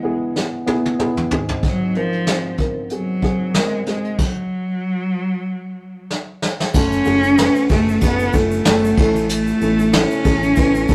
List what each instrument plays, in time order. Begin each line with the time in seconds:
Already playing: felt piano E2 E3 B3 E4 G#4
0.03 felt piano B3 E4 G#4
0.36 felt piano B3 E4 G#4, snare
0.66 felt piano B3 E4 G#4, high tom
0.86 high tom
0.99 felt piano B3 E4 G#4, mid tom
1.17 mid tom
1.31 felt piano G#1 G#2 C4 F#4 G#4, floor tom
1.49 floor tom
1.63 cello F#3, kick, closed hi-hat
1.95 cello F3, felt piano C4 F#4 A#4, closed hi-hat
2.12 closed hi-hat
2.26 felt piano C4 F#4 G#4, snare, closed hi-hat
2.58 felt piano C4 F#4 A#4, kick, closed hi-hat
2.90 cello F#3, felt piano C4 F#4 G#4, closed hi-hat
3.22 felt piano C4 F#4 G#4, kick, closed hi-hat
3.54 cello G#3, felt piano C4 F#4 A#4, snare, closed hi-hat
3.86 cello G#3, felt piano C4 F#4 G#4, snare, closed hi-hat
4.04 closed hi-hat
4.18 cello F#3, kick, crash
6.11 snare
6.42 snare
6.60 snare
6.74 fingered electric bass F#1, felt piano A3 C#4 F#4 A4, cello C#4, kick, crash, shaker
6.92 shaker
7.05 fingered electric bass F#1, felt piano A3 C#4 F#4 G#4, ride, shaker
7.23 shaker
7.38 felt piano A3 C#4 F#4 B4, snare, ride, shaker
7.55 shaker
7.69 fingered electric bass F#1, felt piano A3 C#4 F#4 G#4, cello A3, kick, ride, shaker
7.89 shaker
8.01 fingered electric bass F#1, felt piano A3 C#4 F#4 G#4, cello B3, kick, ride, shaker
8.19 ride, shaker
8.33 fingered electric bass F#1, felt piano A3 C#4 F#4 A4, cello A3, kick, ride, shaker
8.51 shaker
8.65 fingered electric bass F#1, felt piano A3 C#4 F#4 A4, snare, ride, shaker
8.84 shaker
8.97 fingered electric bass A1, felt piano A2 A3 C#4 E4 A4, kick, crash
9.15 ride, shaker
9.29 cello A3, hi-hat pedal, ride, shaker
9.47 shaker
9.61 fingered electric bass A1, felt piano A3 C#4 E4 A4, ride, shaker
9.79 shaker
9.92 felt piano A3 C#4 E4 A4, cello C#4, snare, ride, shaker
10.11 shaker
10.24 fingered electric bass A1, felt piano A3 C#4 E4 G#4, kick, ride, shaker
10.43 shaker
10.56 fingered electric bass A1, felt piano A3 C#4 E4 B4, kick, ride, shaker
10.75 ride, shaker
10.88 fingered electric bass A1, felt piano A3 C#4 E4 A4, kick, ride, shaker